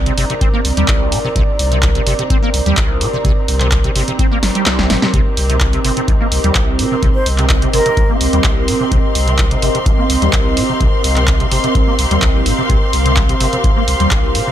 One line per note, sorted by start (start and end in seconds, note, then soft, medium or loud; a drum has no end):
0.00 0.10 C2 medium
0.00 14.52 C4 medium
0.00 8.22 D#4 medium
0.00 14.52 G4 medium
0.00 14.52 A#4 medium
0.00 5.12 D5 medium
0.00 7.00 A#5 medium
0.06 0.13 C3 medium
0.06 closed hi-hat soft
0.18 0.25 G1 medium
0.18 0.24 C3 medium
0.18 open hi-hat medium
0.30 0.34 C3 medium
0.30 closed hi-hat soft
0.41 0.48 C4 medium
0.41 kick loud
0.41 closed hi-hat medium
0.53 0.60 A#3 medium
0.65 0.72 C2 medium
0.65 open hi-hat loud
0.77 0.84 D#2 medium
0.77 0.86 G3 medium
0.77 closed hi-hat soft
0.88 1.14 C2 medium
0.88 kick loud
0.88 clap loud
0.88 closed hi-hat medium
1.12 1.19 C3 medium
1.12 open hi-hat medium
1.24 1.28 C3 medium
1.36 1.43 C2 loud
1.36 1.42 C3 loud
1.36 kick loud
1.36 closed hi-hat medium
1.59 1.99 C2 medium
1.59 open hi-hat medium
1.72 1.78 C3 medium
1.72 closed hi-hat soft
1.83 1.90 C2 medium
1.83 kick loud
1.83 clap loud
1.83 closed hi-hat medium
1.95 2.02 C3 medium
1.95 closed hi-hat medium
2.07 2.14 G1 loud
2.07 2.13 C3 medium
2.07 open hi-hat medium
2.19 2.23 C3 medium
2.19 closed hi-hat medium
2.30 2.37 C4 medium
2.30 kick loud
2.30 closed hi-hat medium
2.42 2.49 A#3 medium
2.54 2.61 C2 medium
2.54 open hi-hat loud
2.66 2.73 D#2 medium
2.66 2.75 G3 medium
2.66 closed hi-hat medium
2.77 3.02 C2 medium
2.77 kick loud
2.77 clap loud
2.77 closed hi-hat medium
3.01 3.08 C3 medium
3.01 open hi-hat medium
3.13 3.17 C3 medium
3.25 3.32 C2 loud
3.25 3.31 C3 loud
3.25 kick loud
3.25 closed hi-hat medium
3.48 3.88 C2 medium
3.48 open hi-hat medium
3.60 3.67 C3 medium
3.60 clap soft
3.60 closed hi-hat medium
3.72 3.79 C2 medium
3.72 kick loud
3.72 clap loud
3.72 closed hi-hat medium
3.84 3.90 C3 medium
3.84 closed hi-hat medium
3.96 4.03 G1 loud
3.96 4.02 C3 medium
3.96 open hi-hat medium
4.08 4.12 C3 medium
4.08 closed hi-hat medium
4.19 4.26 C4 medium
4.19 kick loud
4.19 closed hi-hat medium
4.31 4.38 A#3 medium
4.43 4.50 G1 loud
4.43 snare medium
4.43 open hi-hat loud
4.55 4.64 G3 medium
4.55 closed hi-hat medium
4.66 4.91 C2 medium
4.66 snare medium
4.66 clap loud
4.66 closed hi-hat medium
4.79 4.86 G1 loud
4.79 snare medium
4.90 4.98 G1 medium
4.90 4.97 C3 medium
4.90 snare medium
4.90 open hi-hat medium
5.02 5.06 C3 medium
5.02 snare medium
5.14 5.21 C2 loud
5.14 5.20 C3 loud
5.14 12.68 D#5 medium
5.14 kick loud
5.14 closed hi-hat medium
5.37 5.77 C2 medium
5.37 open hi-hat loud
5.50 5.56 C3 medium
5.50 closed hi-hat medium
5.60 5.68 C2 medium
5.60 kick loud
5.60 clap loud
5.60 closed hi-hat medium
5.73 5.79 C3 medium
5.73 closed hi-hat medium
5.84 5.92 G1 loud
5.84 5.91 C3 medium
5.84 open hi-hat medium
5.97 6.01 C3 medium
5.97 closed hi-hat medium
6.08 6.15 C2 medium
6.08 kick loud
6.08 closed hi-hat medium
6.20 6.27 A#3 medium
6.32 6.39 C2 medium
6.32 open hi-hat loud
6.44 6.51 D#2 medium
6.44 6.53 G3 medium
6.44 closed hi-hat medium
6.55 6.81 C2 medium
6.55 kick loud
6.55 clap loud
6.55 closed hi-hat medium
6.79 6.86 C3 medium
6.79 open hi-hat medium
6.87 14.52 C6 medium
6.91 6.95 C3 medium
7.03 7.10 C2 loud
7.03 7.09 C3 loud
7.03 kick loud
7.03 closed hi-hat medium
7.15 7.27 C5 medium
7.26 7.66 C2 medium
7.26 open hi-hat loud
7.38 7.45 C3 medium
7.38 clap soft
7.38 closed hi-hat medium
7.49 7.57 C2 medium
7.49 kick loud
7.49 clap loud
7.49 closed hi-hat medium
7.62 7.68 C3 medium
7.62 closed hi-hat medium
7.73 7.81 G1 medium
7.73 7.80 C3 medium
7.73 8.09 A#4 medium
7.73 open hi-hat medium
7.86 7.90 C3 medium
7.86 closed hi-hat medium
7.97 8.04 C2 medium
7.97 kick loud
7.97 closed hi-hat medium
8.08 8.16 A#3 medium
8.08 14.52 F5 medium
8.21 8.28 C2 medium
8.21 open hi-hat loud
8.33 8.40 D#2 medium
8.33 8.42 G3 medium
8.33 closed hi-hat medium
8.44 8.69 C2 medium
8.44 kick loud
8.44 clap loud
8.44 closed hi-hat medium
8.68 8.75 C3 medium
8.68 open hi-hat medium
8.80 8.84 C3 medium
8.92 8.99 C2 loud
8.92 8.98 C3 loud
8.92 kick loud
8.92 closed hi-hat medium
9.15 9.55 C2 medium
9.15 open hi-hat loud
9.28 9.34 C3 medium
9.28 closed hi-hat soft
9.38 9.46 C2 medium
9.38 kick loud
9.38 clap loud
9.38 closed hi-hat medium
9.51 9.57 C3 medium
9.51 closed hi-hat medium
9.62 9.70 G1 loud
9.62 9.69 C3 medium
9.62 open hi-hat medium
9.75 9.79 C3 medium
9.75 closed hi-hat soft
9.86 9.93 C2 medium
9.86 kick loud
9.86 closed hi-hat medium
9.98 10.05 A#3 medium
10.10 10.17 C2 medium
10.10 open hi-hat loud
10.22 10.29 D#2 medium
10.22 10.31 G3 medium
10.22 closed hi-hat soft
10.33 10.58 C2 medium
10.33 kick loud
10.33 clap loud
10.33 closed hi-hat medium
10.57 10.64 C3 medium
10.57 open hi-hat medium
10.69 10.73 C3 medium
10.81 10.88 C2 loud
10.81 10.87 C3 loud
10.81 kick loud
10.81 closed hi-hat medium
11.04 11.44 C2 medium
11.04 open hi-hat loud
11.16 11.23 C3 medium
11.16 clap soft
11.16 closed hi-hat soft
11.27 11.35 C2 medium
11.27 kick loud
11.27 clap loud
11.27 closed hi-hat medium
11.40 11.46 C3 medium
11.40 closed hi-hat soft
11.52 11.59 G1 loud
11.52 11.58 C3 medium
11.52 open hi-hat medium
11.64 11.68 C3 medium
11.64 closed hi-hat soft
11.75 11.82 C2 medium
11.75 kick loud
11.75 closed hi-hat medium
11.87 11.94 A#3 medium
11.99 12.06 C2 medium
11.99 open hi-hat loud
12.11 12.18 D#2 medium
12.11 12.20 G3 medium
12.11 closed hi-hat soft
12.22 12.30 C2 medium
12.22 12.47 C2 medium
12.22 kick loud
12.22 clap loud
12.22 closed hi-hat medium
12.35 12.41 A#1 medium
12.46 12.53 G1 medium
12.46 12.53 C3 medium
12.46 open hi-hat medium
12.58 12.62 C3 medium
12.70 12.77 C2 loud
12.70 12.76 C3 loud
12.70 14.52 F5 medium
12.70 kick loud
12.70 closed hi-hat medium
12.93 13.33 C2 medium
12.93 open hi-hat loud
13.05 13.12 C3 medium
13.05 closed hi-hat soft
13.16 13.24 C2 medium
13.16 kick loud
13.16 clap loud
13.16 closed hi-hat medium
13.29 13.35 C3 medium
13.29 closed hi-hat soft
13.40 13.48 G1 loud
13.40 13.47 C3 medium
13.40 open hi-hat medium
13.53 13.56 C3 medium
13.53 closed hi-hat soft
13.64 13.71 C2 medium
13.64 kick loud
13.64 closed hi-hat medium
13.76 13.83 A#3 medium
13.88 13.95 C2 medium
13.88 open hi-hat loud
14.00 14.07 D#2 medium
14.00 14.09 G3 medium
14.00 closed hi-hat medium
14.11 14.36 C2 medium
14.11 kick loud
14.11 clap loud
14.11 closed hi-hat medium
14.35 14.42 C3 medium
14.35 open hi-hat medium
14.47 14.51 C3 medium